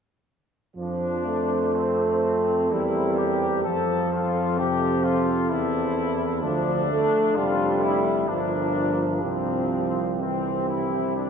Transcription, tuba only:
0.77 2.73 F2 soft
2.71 3.65 E2 soft
3.66 5.53 F2 medium
5.52 6.45 E2 soft
6.44 7.09 D2 medium
7.37 8.25 F1 soft
8.28 9.21 G1 soft
9.23 11.30 C2 soft

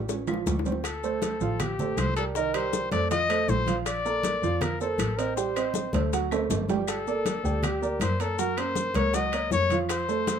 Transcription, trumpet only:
0.86 1.63 A4 medium
1.61 1.99 G4 medium
1.98 2.16 C5 medium
2.16 2.25 A4 medium
2.35 2.56 A#4 medium
2.54 2.91 C5 loud
2.92 3.09 D5 loud
3.11 3.51 D#5 loud
3.49 3.77 C5 loud
3.87 4.63 D5 loud
4.62 4.81 A#4 medium
4.81 5.19 A4 medium
5.17 5.35 A#4 medium
5.36 6.08 C5 medium
6.89 7.66 A4 medium
7.64 8.01 G4 medium
8.02 8.23 C5 loud
8.21 8.41 A4 medium
8.39 8.59 A#4 medium
8.58 8.97 C5 loud
8.96 9.16 C#5 loud
9.15 9.52 D#5 loud
9.53 9.78 C#5 loud
9.90 10.39 C5 loud

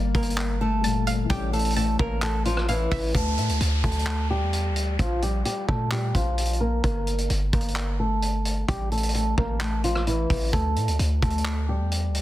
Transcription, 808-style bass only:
0.00 0.14 G1 loud
0.15 1.26 G1 loud
1.30 1.97 A1 loud
1.99 2.88 A1 loud
2.92 3.14 A1 loud
3.15 3.39 D2 loud
3.38 3.51 A2 loud
3.49 3.60 D2 loud
3.61 3.83 D2 loud
3.84 4.43 D2 loud
4.42 4.72 E2 loud
4.70 4.98 D2 loud
4.99 5.44 A#1 loud
5.69 6.13 A#2 loud
6.15 6.81 A#1 loud
6.84 7.28 G1 loud
7.30 7.52 G1 loud
7.53 8.65 G1 loud
8.69 9.35 A1 loud
9.38 10.26 A1 loud
10.30 10.52 A1 loud
10.53 10.78 D2 loud
10.76 10.89 A2 medium
10.88 10.99 D2 loud
10.99 11.21 D2 loud
11.22 11.82 D2 loud
11.80 12.10 E2 loud
12.09 12.22 D2 loud

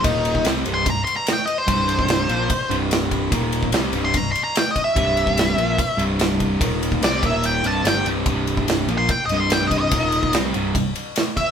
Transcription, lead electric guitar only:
0.04 0.44 D#4 medium
0.74 0.86 C6 medium
0.90 1.01 A#5 loud
1.05 1.15 C6 medium
1.16 1.28 A#5 medium
1.33 1.43 G5 medium
1.46 1.58 D#5 medium
1.58 2.75 C5 medium
4.05 4.17 C6 loud
4.17 4.29 A#5 medium
4.32 4.43 C6 medium
4.44 4.56 A#5 medium
4.58 4.70 G5 medium
4.71 4.84 D#5 medium
4.84 6.03 E5 medium
7.04 7.23 D5 medium
7.27 7.45 E5 medium
7.46 7.65 G5 medium
7.67 7.86 A5 medium
7.88 8.06 G5 medium
8.98 9.10 C6 loud
9.10 9.23 G5 medium
9.26 9.38 D#5 medium
9.40 9.51 C6 medium
9.53 9.65 G5 medium
9.67 9.77 D#5 medium
9.78 10.32 D#5 medium
11.37 11.51 E5 medium

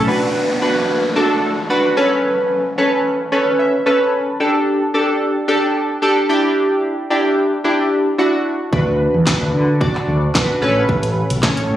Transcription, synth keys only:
0.07 0.49 D4 medium
0.07 0.49 F#4 medium
0.07 0.49 B4 loud
0.62 1.03 D4 medium
0.62 1.03 F#4 medium
0.62 1.04 B4 medium
1.16 1.57 D4 medium
1.16 1.57 F#4 medium
1.16 1.58 A4 loud
1.70 1.97 D4 medium
1.70 1.97 F#4 medium
1.70 1.96 B4 loud
1.97 2.62 C#4 medium
1.97 2.63 A4 medium
1.97 2.63 B4 loud
2.78 3.19 C#4 medium
2.78 3.20 A4 medium
2.78 3.20 B4 medium
3.32 3.74 C#4 medium
3.32 3.74 A4 medium
3.32 3.74 B4 loud
3.59 3.84 E5 medium
3.86 4.28 C#4 medium
3.86 4.28 A4 medium
3.86 4.28 B4 loud
3.86 4.36 A5 medium
4.40 4.82 D4 medium
4.40 4.82 G4 medium
4.40 4.82 A4 loud
4.94 5.36 D4 medium
4.94 5.36 G4 medium
4.94 5.36 A4 medium
5.48 5.90 D4 medium
5.48 5.90 G4 medium
5.48 5.90 A4 loud
6.02 6.28 D4 medium
6.02 6.28 G4 medium
6.02 6.29 A4 loud
6.29 6.95 D4 medium
6.29 6.95 E4 medium
6.29 6.95 G4 loud
7.10 7.52 D4 medium
7.10 7.52 E4 medium
7.10 7.52 G4 medium
7.64 8.06 D4 medium
7.64 8.06 E4 medium
7.64 8.06 G4 loud
8.18 8.60 D4 medium
8.18 8.60 E4 medium
8.18 8.60 F#4 loud
8.72 9.14 D4 medium
8.72 9.14 F#4 medium
8.72 9.14 B4 loud
9.26 9.68 D4 medium
9.26 9.68 F#4 medium
9.26 9.68 B4 medium
9.80 10.22 D4 medium
9.80 10.22 F#4 medium
9.80 10.22 D5 loud
10.35 10.62 D4 medium
10.35 10.62 F#4 medium
10.35 10.61 B4 loud
10.62 11.27 C#4 medium
10.62 11.27 A4 medium
10.62 11.28 B4 loud
11.43 11.77 C#4 medium
11.43 11.77 A4 medium
11.43 11.77 C#5 loud

